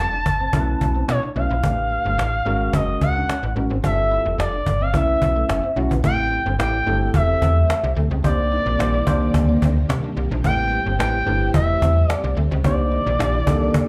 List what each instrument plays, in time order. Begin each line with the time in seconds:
Already playing: tine electric piano G3 C4 F4 A4, analog synth lead A5
0.00 fm bass F1
0.13 clean electric guitar D4, cajon slap
0.26 fm bass G1, muted clean electric guitar stroke, cajon bass
0.40 clean electric guitar C4, cajon slap
0.53 fm bass B1, tine electric piano A3 C#4 E4 A#4, clean electric guitar A3, cajon bass
0.60 tine electric piano B4
0.68 cajon slap
0.81 fm bass B1, muted clean electric guitar stroke, cajon bass
0.95 clean electric guitar C4, cajon slap
1.08 fm bass B2, analog synth lead C#5, cajon slap
1.23 clean electric guitar D4, cajon slap
1.36 fm bass B1, tine electric piano A3 C#4 E4 B4, analog synth lead F5, muted clean electric guitar stroke, cajon slap
1.50 fm bass A#1, clean electric guitar E4, cajon slap
1.63 fm bass A1, tine electric piano A3 C4 G4 B4, clean electric guitar A3, cajon bass
1.70 tine electric piano D4
1.78 cajon slap
1.91 muted clean electric guitar stroke, cajon slap
2.05 fm bass G1, clean electric guitar A3, cajon slap
2.18 fm bass A1, cajon slap
2.34 cajon slap
2.45 fm bass G#1, tine electric piano G#3 C#4 F#4 A#4, clean electric guitar G#3, cajon slap
2.61 cajon slap
2.73 fm bass F#1, clean electric guitar C4, analog synth lead D#5, cajon bass
2.88 cajon slap
3.01 fm bass C#2, analog synth lead F#5, muted clean electric guitar stroke, cajon bass
3.16 clean electric guitar D4
3.29 clean electric guitar C#4, cajon slap
3.43 fm bass A1, muted clean electric guitar stroke
3.56 fm bass A1, tine electric piano G#3 C#4 F#4 A#4, cajon slap
3.70 fm bass G#1, clean electric guitar C4, cajon slap
3.83 fm bass G1, tine electric piano G3 C4 F4 A4, clean electric guitar D4, analog synth lead E5, cajon bass
3.99 muted clean electric guitar stroke
4.11 clean electric guitar E4, cajon slap
4.25 fm bass F1, cajon slap
4.38 fm bass F1, analog synth lead D5, cajon slap
4.53 clean electric guitar D4, cajon slap
4.66 fm bass G1, muted clean electric guitar stroke, cajon bass
4.81 clean electric guitar C4, analog synth lead F5, cajon slap
4.93 fm bass B1, tine electric piano A3 C#4 E4 B4, clean electric guitar B3, analog synth lead E5, cajon bass
5.09 cajon slap
5.21 fm bass B1, muted clean electric guitar stroke, cajon bass
5.36 clean electric guitar A3
5.49 fm bass F#1, cajon slap
5.63 clean electric guitar C4, cajon slap
5.76 fm bass B1, tine electric piano A3 C#4 E4 F#4, muted clean electric guitar stroke
5.91 fm bass A#1, clean electric guitar B3, cajon bass
6.04 fm bass A1, string machine G3 A3 C4, tine electric piano A3 C4 E4 G4 B4, clean electric guitar A3, analog synth lead G5, cajon bass
6.18 cajon slap
6.31 muted clean electric guitar stroke, cajon slap
6.46 fm bass G1, clean electric guitar C4, cajon slap
6.59 fm bass A1, tine electric piano A3 C4 E4 G4 D5, analog synth lead G5, cajon slap
6.74 cajon slap
6.86 fm bass G1, tine electric piano A3 C4 E4 G4 A4, clean electric guitar D4, cajon slap
7.01 cajon slap
7.14 fm bass E1, analog synth lead E5, cajon bass
7.29 cajon slap
7.41 fm bass E2, clean electric guitar C4, cajon bass
7.56 cajon slap
7.69 muted clean electric guitar stroke, cajon slap
7.84 fm bass C2, cajon slap
7.96 fm bass D2, clean electric guitar A3, cajon slap
8.11 fm bass C#2, clean electric guitar C4, cajon slap
8.24 fm bass C2, string machine C3 D#3 A#3 D5, tine electric piano A#3 D4 D#4 G4 C5, clean electric guitar C4, analog synth lead D5, cajon bass
8.39 muted clean electric guitar stroke, cajon slap
8.52 clean electric guitar D#4, cajon slap
8.66 fm bass A#1, cajon slap
8.79 fm bass A#1, tine electric piano A#3 D4 D#4 G4 C5, muted clean electric guitar stroke, cajon slap
8.94 clean electric guitar E4, cajon slap
9.06 fm bass C2, tine electric piano A#3 D4 D#4 G4 C5, clean electric guitar D4, cajon bass
9.34 fm bass D2, muted clean electric guitar stroke, cajon bass
9.49 clean electric guitar A#3, cajon slap
9.62 fm bass D2, clean electric guitar C4, cajon bass
9.76 cajon slap
9.89 fm bass C3, cajon slap
10.04 clean electric guitar D4, cajon slap
10.17 fm bass C2, muted clean electric guitar stroke, cajon slap
10.31 fm bass A#1, clean electric guitar D4, cajon slap
10.44 fm bass A1, tine electric piano A3 C4 E4 G4 B4, string machine A3 C4, clean electric guitar A3, analog synth lead G5, cajon bass
10.59 cajon slap
10.72 muted clean electric guitar stroke, cajon slap
10.86 fm bass G1, clean electric guitar C4, cajon slap
10.99 fm bass A1, tine electric piano A3 C4 E4 G4 B4, analog synth lead G5, cajon slap
11.15 cajon slap
11.26 fm bass G1, tine electric piano A3 C4 E4 G4 B4, clean electric guitar D4, cajon slap
11.42 cajon slap
11.54 fm bass E1, analog synth lead E5, cajon bass
11.69 cajon slap
11.82 fm bass E2, clean electric guitar C4, cajon bass
11.96 cajon slap
12.09 analog synth lead D5, muted clean electric guitar stroke, cajon slap
12.24 fm bass C2, cajon slap
12.37 fm bass D2, clean electric guitar A3, cajon slap
12.51 fm bass C#2, clean electric guitar C4, cajon slap
12.64 fm bass C2, string machine C3 D#3 A#3 D5, tine electric piano A#3 D4 D#4 G4 C5, clean electric guitar C4, analog synth lead D5, cajon bass
12.79 muted clean electric guitar stroke
12.92 clean electric guitar D#4, cajon slap
13.06 fm bass A#1, cajon slap
13.19 fm bass A#1, tine electric piano A#3 D4 D#4 G4 D5, muted clean electric guitar stroke, cajon slap
13.34 clean electric guitar E4
13.46 fm bass C2, tine electric piano A#3 D4 D#4 G4 A4, clean electric guitar D4, cajon bass
13.62 cajon slap
13.74 muted clean electric guitar stroke, cajon bass